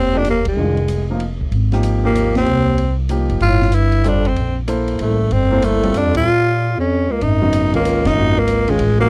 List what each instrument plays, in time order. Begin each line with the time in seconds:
Already playing: upright bass F1, bass clarinet D#2, tenor saxophone C4
0.13 bass clarinet F2, grand piano F3 A#3 D#4 G4
0.18 tenor saxophone D4
0.24 bass clarinet D#2, hi-hat pedal, ride
0.30 tenor saxophone A#3
0.45 bass clarinet C2, tenor saxophone G#3, kick, ride
0.57 upright bass F1, grand piano D#3 G#3 D4 F4
0.77 ride
0.88 hi-hat pedal, ride
1.10 grand piano F3 A#3 D#4 F4
1.20 ride
1.41 kick
1.51 upright bass G#1, ride
1.72 grand piano F3 A#3 D#4 G4, snare, ride
1.83 hi-hat pedal, ride
2.03 bass clarinet D#2, grand piano F3 A#3 D#4 G4, tenor saxophone A#3
2.15 hi-hat pedal, ride
2.35 bass clarinet D#2, tenor saxophone C4, snare, ride
2.46 upright bass C2, ride
2.78 ride
3.09 grand piano F3 A#3 D#4 G4, hi-hat pedal, ride
3.29 upright bass F#1, ride
3.40 upright bass G1, bass clarinet A2, tenor saxophone F4, ride
3.61 snare
3.72 bass clarinet G2, tenor saxophone E4, hi-hat pedal, ride
3.92 ride
4.04 bass clarinet F2, grand piano G3 C4 F4 A4, tenor saxophone D4, hi-hat pedal, ride
4.25 bass clarinet F2, tenor saxophone C4, ride
4.36 upright bass A#1, ride
4.68 grand piano A#3 E4 A4 C5, hi-hat pedal, ride
4.88 ride
4.99 upright bass A1, bass clarinet C2, tenor saxophone A3, ride
5.31 upright bass G1, bass clarinet F2, tenor saxophone C4, ride
5.51 grand piano A#3 E4 A4 C5
5.62 bass clarinet C2, tenor saxophone A3, hi-hat pedal, ride
5.83 grand piano G3 C4 F4 A4, ride
5.94 upright bass E2, bass clarinet F2, tenor saxophone D4, hi-hat pedal, ride
6.14 bass clarinet A#2, tenor saxophone F4, kick, ride
6.77 bass clarinet F2, tenor saxophone C#4
7.10 bass clarinet C#2, tenor saxophone A#3
7.21 upright bass G#1, bass clarinet F#2, tenor saxophone D#4, ride
7.41 grand piano C#3 F#3 B3 D#4
7.53 hi-hat pedal, ride
7.73 bass clarinet C#2, grand piano D#3 G#3 C#4 F4, tenor saxophone A#3, ride
7.85 hi-hat pedal, ride
8.05 upright bass F#1, bass clarinet F#2, tenor saxophone D#4, snare, ride
8.16 upright bass G#1, grand piano F3 A#3 D#4 F#4
8.37 bass clarinet C#2, tenor saxophone A#3
8.48 hi-hat pedal, ride
8.68 bass clarinet C#2, grand piano D#3 G#3 C#4 F4, tenor saxophone G#3, ride
8.79 upright bass A1, ride
8.99 bass clarinet C#2, grand piano F3 A#3 D#4 F#4, tenor saxophone A#3